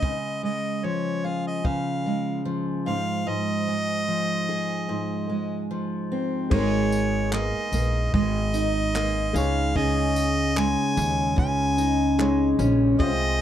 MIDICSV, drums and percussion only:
0, 0, Header, 1, 2, 480
1, 0, Start_track
1, 0, Key_signature, -5, "major"
1, 0, Tempo, 809717
1, 18, Time_signature, 4, 2, 24, 8
1, 7952, End_track
2, 0, Start_track
2, 0, Title_t, "Drums"
2, 15, Note_on_c, 9, 36, 91
2, 75, Note_off_c, 9, 36, 0
2, 977, Note_on_c, 9, 36, 98
2, 1036, Note_off_c, 9, 36, 0
2, 3860, Note_on_c, 9, 49, 81
2, 3861, Note_on_c, 9, 36, 107
2, 3920, Note_off_c, 9, 49, 0
2, 3921, Note_off_c, 9, 36, 0
2, 4104, Note_on_c, 9, 54, 67
2, 4164, Note_off_c, 9, 54, 0
2, 4343, Note_on_c, 9, 39, 110
2, 4402, Note_off_c, 9, 39, 0
2, 4580, Note_on_c, 9, 54, 65
2, 4639, Note_off_c, 9, 54, 0
2, 4825, Note_on_c, 9, 36, 121
2, 4884, Note_off_c, 9, 36, 0
2, 5062, Note_on_c, 9, 54, 71
2, 5121, Note_off_c, 9, 54, 0
2, 5309, Note_on_c, 9, 39, 112
2, 5368, Note_off_c, 9, 39, 0
2, 5546, Note_on_c, 9, 54, 65
2, 5605, Note_off_c, 9, 54, 0
2, 5784, Note_on_c, 9, 36, 107
2, 5844, Note_off_c, 9, 36, 0
2, 6024, Note_on_c, 9, 54, 65
2, 6084, Note_off_c, 9, 54, 0
2, 6266, Note_on_c, 9, 39, 111
2, 6325, Note_off_c, 9, 39, 0
2, 6504, Note_on_c, 9, 54, 57
2, 6564, Note_off_c, 9, 54, 0
2, 6746, Note_on_c, 9, 36, 110
2, 6805, Note_off_c, 9, 36, 0
2, 6985, Note_on_c, 9, 54, 67
2, 7044, Note_off_c, 9, 54, 0
2, 7229, Note_on_c, 9, 39, 100
2, 7288, Note_off_c, 9, 39, 0
2, 7464, Note_on_c, 9, 54, 57
2, 7523, Note_off_c, 9, 54, 0
2, 7706, Note_on_c, 9, 36, 114
2, 7765, Note_off_c, 9, 36, 0
2, 7952, End_track
0, 0, End_of_file